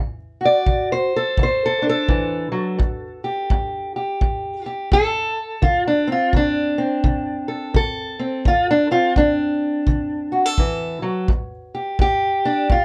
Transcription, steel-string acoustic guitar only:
0, 0, Header, 1, 2, 480
1, 0, Start_track
1, 0, Tempo, 707547
1, 1895, Time_signature, 4, 2, 24, 8
1, 8716, End_track
2, 0, Start_track
2, 0, Title_t, "Steel-string acoustic guitar"
2, 0, Program_c, 0, 25
2, 0, Note_on_c, 0, 50, 72
2, 277, Note_on_c, 0, 66, 43
2, 308, Note_on_c, 0, 74, 86
2, 417, Note_off_c, 0, 50, 0
2, 455, Note_on_c, 0, 50, 68
2, 621, Note_off_c, 0, 74, 0
2, 625, Note_on_c, 0, 72, 82
2, 776, Note_off_c, 0, 66, 0
2, 790, Note_on_c, 0, 69, 79
2, 899, Note_off_c, 0, 50, 0
2, 940, Note_off_c, 0, 72, 0
2, 942, Note_on_c, 0, 50, 67
2, 970, Note_on_c, 0, 72, 76
2, 1102, Note_off_c, 0, 69, 0
2, 1124, Note_on_c, 0, 69, 73
2, 1235, Note_on_c, 0, 62, 45
2, 1269, Note_off_c, 0, 69, 0
2, 1285, Note_on_c, 0, 69, 94
2, 1383, Note_off_c, 0, 50, 0
2, 1416, Note_on_c, 0, 52, 62
2, 1593, Note_off_c, 0, 72, 0
2, 1705, Note_off_c, 0, 52, 0
2, 1708, Note_on_c, 0, 54, 63
2, 1889, Note_on_c, 0, 43, 71
2, 1891, Note_off_c, 0, 54, 0
2, 2199, Note_on_c, 0, 67, 44
2, 2337, Note_off_c, 0, 43, 0
2, 2382, Note_on_c, 0, 43, 75
2, 2678, Note_off_c, 0, 67, 0
2, 2687, Note_on_c, 0, 67, 44
2, 2823, Note_off_c, 0, 43, 0
2, 2860, Note_on_c, 0, 43, 70
2, 3153, Note_off_c, 0, 67, 0
2, 3162, Note_on_c, 0, 67, 45
2, 3191, Note_off_c, 0, 69, 0
2, 3302, Note_off_c, 0, 43, 0
2, 3336, Note_on_c, 0, 43, 71
2, 3338, Note_off_c, 0, 67, 0
2, 3346, Note_on_c, 0, 69, 105
2, 3610, Note_off_c, 0, 62, 0
2, 3780, Note_off_c, 0, 43, 0
2, 3812, Note_on_c, 0, 50, 74
2, 3819, Note_on_c, 0, 65, 78
2, 3821, Note_off_c, 0, 69, 0
2, 3978, Note_off_c, 0, 65, 0
2, 3985, Note_on_c, 0, 62, 73
2, 4121, Note_on_c, 0, 60, 44
2, 4141, Note_off_c, 0, 62, 0
2, 4152, Note_on_c, 0, 65, 72
2, 4258, Note_off_c, 0, 50, 0
2, 4302, Note_on_c, 0, 50, 71
2, 4304, Note_off_c, 0, 65, 0
2, 4318, Note_on_c, 0, 62, 87
2, 4597, Note_off_c, 0, 60, 0
2, 4600, Note_on_c, 0, 60, 43
2, 4744, Note_off_c, 0, 50, 0
2, 4778, Note_on_c, 0, 50, 73
2, 5075, Note_on_c, 0, 69, 45
2, 5221, Note_off_c, 0, 50, 0
2, 5253, Note_on_c, 0, 50, 70
2, 5255, Note_off_c, 0, 69, 0
2, 5266, Note_on_c, 0, 69, 99
2, 5267, Note_off_c, 0, 62, 0
2, 5551, Note_off_c, 0, 60, 0
2, 5559, Note_on_c, 0, 60, 47
2, 5699, Note_off_c, 0, 50, 0
2, 5716, Note_off_c, 0, 60, 0
2, 5737, Note_on_c, 0, 50, 76
2, 5751, Note_on_c, 0, 65, 82
2, 5903, Note_off_c, 0, 65, 0
2, 5906, Note_on_c, 0, 62, 83
2, 6045, Note_on_c, 0, 60, 46
2, 6047, Note_off_c, 0, 62, 0
2, 6049, Note_on_c, 0, 65, 80
2, 6181, Note_off_c, 0, 50, 0
2, 6213, Note_off_c, 0, 65, 0
2, 6221, Note_off_c, 0, 69, 0
2, 6222, Note_on_c, 0, 50, 69
2, 6224, Note_on_c, 0, 62, 89
2, 6664, Note_off_c, 0, 50, 0
2, 6699, Note_on_c, 0, 50, 72
2, 7001, Note_on_c, 0, 66, 44
2, 7094, Note_off_c, 0, 66, 0
2, 7094, Note_on_c, 0, 69, 38
2, 7142, Note_off_c, 0, 50, 0
2, 7180, Note_off_c, 0, 62, 0
2, 7185, Note_on_c, 0, 52, 64
2, 7475, Note_off_c, 0, 52, 0
2, 7478, Note_on_c, 0, 54, 63
2, 7639, Note_off_c, 0, 60, 0
2, 7657, Note_off_c, 0, 54, 0
2, 7660, Note_off_c, 0, 69, 0
2, 7663, Note_on_c, 0, 43, 73
2, 7968, Note_on_c, 0, 67, 47
2, 8104, Note_off_c, 0, 43, 0
2, 8138, Note_on_c, 0, 43, 69
2, 8148, Note_off_c, 0, 67, 0
2, 8151, Note_on_c, 0, 67, 90
2, 8448, Note_on_c, 0, 62, 81
2, 8582, Note_off_c, 0, 43, 0
2, 8617, Note_on_c, 0, 43, 69
2, 8622, Note_off_c, 0, 62, 0
2, 8627, Note_on_c, 0, 65, 78
2, 8716, Note_off_c, 0, 43, 0
2, 8716, Note_off_c, 0, 65, 0
2, 8716, Note_off_c, 0, 67, 0
2, 8716, End_track
0, 0, End_of_file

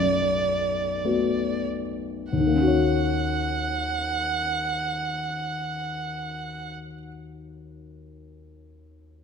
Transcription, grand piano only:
0, 0, Header, 1, 2, 480
1, 0, Start_track
1, 0, Key_signature, -6, "minor"
1, 0, Tempo, 1183432
1, 422, Tempo, 1273885
1, 902, Time_signature, 4, 2, 24, 8
1, 902, Tempo, 1224490
1, 1382, Tempo, 1183432
1, 2342, Tempo, 1212121
1, 3662, End_track
2, 0, Start_track
2, 0, Title_t, "Grand piano"
2, 0, Program_c, 0, 0
2, 0, Control_c, 0, 64, 127
2, 0, Note_on_c, 0, 42, 30
2, 0, Note_on_c, 0, 57, 34
2, 0, Note_on_c, 0, 59, 34
2, 0, Note_on_c, 0, 66, 34
2, 424, Note_off_c, 0, 57, 0
2, 424, Note_on_c, 0, 57, 23
2, 426, Note_off_c, 0, 59, 0
2, 426, Note_on_c, 0, 59, 23
2, 427, Note_off_c, 0, 66, 0
2, 427, Note_on_c, 0, 66, 23
2, 713, Note_off_c, 0, 42, 0
2, 888, Note_off_c, 0, 57, 0
2, 889, Note_off_c, 0, 59, 0
2, 890, Note_off_c, 0, 66, 0
2, 907, Note_on_c, 0, 39, 28
2, 911, Control_c, 0, 64, 0
2, 934, Note_on_c, 0, 51, 26
2, 963, Note_on_c, 0, 58, 28
2, 986, Control_c, 0, 64, 127
2, 990, Note_on_c, 0, 61, 27
2, 1018, Note_on_c, 0, 66, 30
2, 1043, Note_on_c, 0, 73, 28
2, 2661, Note_off_c, 0, 39, 0
2, 2689, Note_off_c, 0, 51, 0
2, 2717, Note_off_c, 0, 58, 0
2, 2745, Note_off_c, 0, 61, 0
2, 2773, Note_off_c, 0, 66, 0
2, 2799, Note_off_c, 0, 73, 0
2, 3662, End_track
0, 0, End_of_file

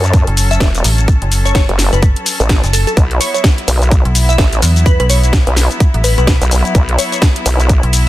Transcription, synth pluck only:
0, 0, Header, 1, 2, 480
1, 0, Start_track
1, 0, Tempo, 472441
1, 1097, Time_signature, 4, 2, 24, 8
1, 8214, End_track
2, 0, Start_track
2, 0, Title_t, "Synth pluck"
2, 0, Program_c, 0, 84
2, 518, Note_on_c, 0, 76, 89
2, 581, Note_off_c, 0, 76, 0
2, 618, Note_on_c, 0, 76, 74
2, 708, Note_off_c, 0, 76, 0
2, 1478, Note_on_c, 0, 73, 86
2, 1542, Note_off_c, 0, 73, 0
2, 1578, Note_on_c, 0, 73, 78
2, 1668, Note_off_c, 0, 73, 0
2, 1958, Note_on_c, 0, 71, 92
2, 2099, Note_off_c, 0, 71, 0
2, 2777, Note_on_c, 0, 69, 87
2, 2867, Note_off_c, 0, 69, 0
2, 2918, Note_on_c, 0, 69, 77
2, 2981, Note_off_c, 0, 69, 0
2, 3256, Note_on_c, 0, 73, 91
2, 3347, Note_off_c, 0, 73, 0
2, 3398, Note_on_c, 0, 73, 74
2, 3461, Note_off_c, 0, 73, 0
2, 4358, Note_on_c, 0, 76, 91
2, 4422, Note_off_c, 0, 76, 0
2, 4457, Note_on_c, 0, 76, 74
2, 4547, Note_off_c, 0, 76, 0
2, 4937, Note_on_c, 0, 71, 87
2, 5027, Note_off_c, 0, 71, 0
2, 5078, Note_on_c, 0, 71, 81
2, 5141, Note_off_c, 0, 71, 0
2, 5178, Note_on_c, 0, 73, 91
2, 5347, Note_off_c, 0, 73, 0
2, 6137, Note_on_c, 0, 71, 91
2, 6227, Note_off_c, 0, 71, 0
2, 6277, Note_on_c, 0, 71, 82
2, 6341, Note_off_c, 0, 71, 0
2, 7097, Note_on_c, 0, 73, 89
2, 7187, Note_off_c, 0, 73, 0
2, 7236, Note_on_c, 0, 73, 77
2, 7301, Note_off_c, 0, 73, 0
2, 8214, End_track
0, 0, End_of_file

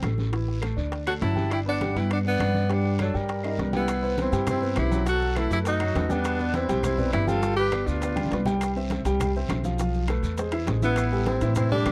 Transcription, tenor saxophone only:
0, 0, Header, 1, 2, 480
1, 0, Start_track
1, 0, Key_signature, 1, "major"
1, 0, Tempo, 295567
1, 539, Time_signature, 4, 2, 24, 8
1, 6312, Key_signature, 0, "major"
1, 19355, End_track
2, 0, Start_track
2, 0, Title_t, "Tenor saxophone"
2, 0, Program_c, 0, 66
2, 1744, Note_on_c, 0, 66, 92
2, 1852, Note_off_c, 0, 66, 0
2, 1981, Note_on_c, 0, 64, 87
2, 2430, Note_off_c, 0, 64, 0
2, 2483, Note_on_c, 0, 64, 86
2, 2587, Note_off_c, 0, 64, 0
2, 2739, Note_on_c, 0, 62, 95
2, 3207, Note_on_c, 0, 64, 81
2, 3231, Note_off_c, 0, 62, 0
2, 3437, Note_off_c, 0, 64, 0
2, 3456, Note_on_c, 0, 62, 87
2, 3558, Note_off_c, 0, 62, 0
2, 3700, Note_on_c, 0, 59, 100
2, 4437, Note_on_c, 0, 62, 86
2, 4461, Note_off_c, 0, 59, 0
2, 4887, Note_off_c, 0, 62, 0
2, 4897, Note_on_c, 0, 54, 75
2, 5149, Note_on_c, 0, 55, 68
2, 5173, Note_off_c, 0, 54, 0
2, 6092, Note_off_c, 0, 55, 0
2, 6114, Note_on_c, 0, 59, 75
2, 6765, Note_off_c, 0, 59, 0
2, 6844, Note_on_c, 0, 60, 81
2, 7267, Note_off_c, 0, 60, 0
2, 7307, Note_on_c, 0, 60, 82
2, 7739, Note_off_c, 0, 60, 0
2, 7777, Note_on_c, 0, 64, 85
2, 8213, Note_off_c, 0, 64, 0
2, 8263, Note_on_c, 0, 66, 98
2, 8735, Note_on_c, 0, 64, 89
2, 8759, Note_off_c, 0, 66, 0
2, 8965, Note_off_c, 0, 64, 0
2, 8974, Note_on_c, 0, 64, 90
2, 9078, Note_off_c, 0, 64, 0
2, 9226, Note_on_c, 0, 63, 93
2, 9934, Note_on_c, 0, 59, 96
2, 9958, Note_off_c, 0, 63, 0
2, 10637, Note_on_c, 0, 60, 92
2, 10661, Note_off_c, 0, 59, 0
2, 11107, Note_off_c, 0, 60, 0
2, 11116, Note_on_c, 0, 60, 91
2, 11561, Note_off_c, 0, 60, 0
2, 11582, Note_on_c, 0, 64, 97
2, 11814, Note_on_c, 0, 65, 102
2, 11839, Note_off_c, 0, 64, 0
2, 12273, Note_off_c, 0, 65, 0
2, 12282, Note_on_c, 0, 67, 103
2, 12781, Note_on_c, 0, 62, 85
2, 12805, Note_off_c, 0, 67, 0
2, 13744, Note_off_c, 0, 62, 0
2, 17608, Note_on_c, 0, 59, 92
2, 18264, Note_off_c, 0, 59, 0
2, 18315, Note_on_c, 0, 60, 89
2, 18754, Note_off_c, 0, 60, 0
2, 18780, Note_on_c, 0, 60, 86
2, 19003, Note_off_c, 0, 60, 0
2, 19033, Note_on_c, 0, 62, 106
2, 19355, Note_off_c, 0, 62, 0
2, 19355, End_track
0, 0, End_of_file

